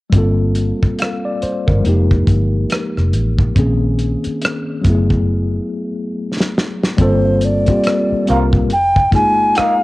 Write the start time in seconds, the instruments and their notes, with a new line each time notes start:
0.10 fingered electric bass G1, tine electric piano G3 A#3, kick, closed hi-hat
0.14 tine electric piano C4 F4
0.18 tine electric piano A4
0.55 closed hi-hat
0.83 muted fingered electric bass stroke, kick
0.99 tine electric piano F5, cross-stick, closed hi-hat
1.25 tine electric piano D5
1.42 tine electric piano C5, muted fingered electric bass stroke, closed hi-hat
1.67 fingered electric bass G1, tine electric piano A#4, kick
1.80 tine electric piano F3 G#3
1.84 fingered electric bass F1, tine electric piano A#3 D#4, closed hi-hat
1.89 tine electric piano G4
2.11 kick
2.27 fingered electric bass G1, kick, closed hi-hat
2.70 cross-stick, closed hi-hat
2.97 fingered electric bass F1, cross-stick
3.13 fingered electric bass A1, closed hi-hat
3.38 kick
3.55 fingered electric bass A#1, tine electric piano D#3 A#3 C4 C#4 G#4, kick, closed hi-hat
3.99 closed hi-hat
4.24 muted fingered electric bass stroke, closed hi-hat
4.41 cross-stick, closed hi-hat
4.81 tine electric piano F#3 A3, kick, closed hi-hat
4.86 fingered electric bass F#1, tine electric piano B3 E4
4.90 tine electric piano G#4
5.10 kick
6.40 snare
6.58 snare
6.83 snare
6.97 fingered electric bass G1, tine electric piano G3 A#3 C4 F4, kick, closed hi-hat
7.01 tine electric piano A4, ocarina C5
7.41 ocarina D5, closed hi-hat
7.66 tine electric piano G3 A#3 C4 F4, kick, closed hi-hat
7.70 tine electric piano G4
7.84 cross-stick, closed hi-hat
8.12 muted fingered electric bass stroke
8.26 tine electric piano G3 A#3 C4 F4, clean electric guitar C4, ocarina F5, closed hi-hat
8.30 fingered electric bass C2, clean electric guitar F4 A#4, tine electric piano A#4
8.53 kick
8.70 fingered electric bass F1, ocarina G5, closed hi-hat
8.96 kick
9.11 fingered electric bass G1, tine electric piano G#3 A#3 D#4 F4 G#4, ocarina G#5, kick, cross-stick, closed hi-hat
9.55 clean electric guitar A#3 D#4 G#4, ocarina F5, muted fingered electric bass stroke, cross-stick, closed hi-hat